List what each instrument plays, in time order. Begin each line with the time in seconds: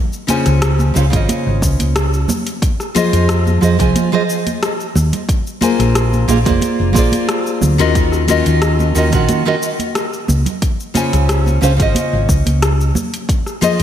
0.13 shaker
0.27 nylon-string guitar C#3 C#4 F4 C5 G#5, closed hi-hat, high conga, shaker
0.46 fingered electric bass C#2, cross-stick, closed hi-hat, shaker
0.62 cross-stick, closed hi-hat, shaker
0.79 high conga, shaker
0.94 fingered electric bass C#2, nylon-string guitar C#3 C#4 F4 C5 F5, shaker
1.10 fingered electric bass G#1, nylon-string guitar C#3 C#4 F4 C5, kick, closed hi-hat, shaker
1.16 nylon-string guitar D#5
1.29 closed hi-hat, high conga, shaker
1.46 fingered electric bass G#1
1.62 fingered electric bass C#2, kick, shaker
1.79 fingered electric bass C#2, closed hi-hat, high conga, shaker
1.96 cross-stick, closed hi-hat, shaker
2.14 shaker
2.28 high conga, low conga, shaker
2.47 closed hi-hat, shaker
2.62 kick, closed hi-hat, shaker
2.80 cross-stick, shaker
2.95 nylon-string guitar F3 F4 G#4 C5 D#5, closed hi-hat, high conga, shaker
3.13 fingered electric bass F2, closed hi-hat, shaker
3.29 cross-stick, closed hi-hat, shaker
3.47 high conga, shaker
3.61 fingered electric bass F2, nylon-string guitar F3 F4 G#4 C5 D#5, shaker
3.79 fingered electric bass C2, nylon-string guitar F3 F4 G#4 C5 G#5, kick, closed hi-hat, shaker
3.96 closed hi-hat, high conga, shaker
4.12 nylon-string guitar F3 F4 G#4 C5 D#5
4.30 shaker
4.46 closed hi-hat, high conga, shaker
4.63 cross-stick, closed hi-hat, shaker
4.80 shaker
4.95 fingered electric bass D#2, high conga, shaker
5.13 closed hi-hat, low conga, shaker
5.29 kick, closed hi-hat, shaker
5.47 shaker
5.61 nylon-string guitar A#3 F4 G#4 C5 G#5, closed hi-hat, high conga, shaker
5.79 fingered electric bass A#1, cross-stick, closed hi-hat, shaker
5.95 cross-stick, closed hi-hat, shaker
6.13 high conga, shaker
6.28 fingered electric bass A#1, nylon-string guitar A#3 F4 G#4 C5 F5, closed hi-hat, shaker
6.45 fingered electric bass F1, nylon-string guitar A#3 F4 G#4 C5 D5, kick, closed hi-hat, shaker
6.61 closed hi-hat, high conga, shaker
6.79 fingered electric bass F1
6.93 fingered electric bass A#1, nylon-string guitar A#3 F4 G#4, kick, shaker
6.97 nylon-string guitar C5 D5
7.12 closed hi-hat, high conga, shaker
7.29 cross-stick, closed hi-hat, shaker
7.47 shaker
7.61 fingered electric bass D2, high conga, low conga, shaker
7.78 fingered electric bass D#2, nylon-string guitar D#3 C#4 F4 F#4 D#5, closed hi-hat, shaker
7.95 kick, closed hi-hat, shaker
8.12 cross-stick, shaker
8.28 nylon-string guitar D#3 C#4 F4 F#4 D#5, closed hi-hat, high conga, shaker
8.46 fingered electric bass D#2, closed hi-hat, shaker
8.62 cross-stick, closed hi-hat, shaker
8.79 high conga, shaker
8.95 fingered electric bass D#2, nylon-string guitar D#3 C#4 F4 F#4 D#5, shaker
9.12 fingered electric bass A#1, nylon-string guitar D#3 C#4 F4 F#4 F#5, kick, closed hi-hat, shaker
9.29 closed hi-hat, high conga, shaker
9.45 nylon-string guitar D#3 C#4 F4 F#4 D#5
9.62 shaker
9.79 closed hi-hat, high conga, shaker
9.95 cross-stick, closed hi-hat, shaker
10.13 shaker
10.28 fingered electric bass C#2, high conga, shaker
10.46 closed hi-hat, low conga, shaker
10.62 kick, closed hi-hat, shaker
10.80 shaker
10.94 nylon-string guitar C#3 C#4 F4 C5 G#5, closed hi-hat, high conga, shaker
11.13 fingered electric bass C#2, cross-stick, closed hi-hat, shaker
11.29 cross-stick, closed hi-hat, shaker
11.46 high conga, shaker
11.61 fingered electric bass C#2, nylon-string guitar C#3 C#4 F4 C5 F5, shaker
11.77 fingered electric bass G#1, nylon-string guitar C#3 C#4 F4 C5, kick, closed hi-hat, shaker
11.82 nylon-string guitar D#5
11.95 closed hi-hat, high conga, shaker
12.13 fingered electric bass G#1
12.29 fingered electric bass C#2, kick, shaker
12.46 fingered electric bass C#2, closed hi-hat, high conga, shaker
12.62 cross-stick, closed hi-hat, shaker
12.81 shaker
12.95 high conga, low conga, shaker
13.14 closed hi-hat, shaker
13.29 kick, closed hi-hat, shaker
13.46 cross-stick, shaker
13.61 nylon-string guitar F3 F4 G#4 C5 D#5, closed hi-hat, high conga, shaker
13.80 fingered electric bass F2, closed hi-hat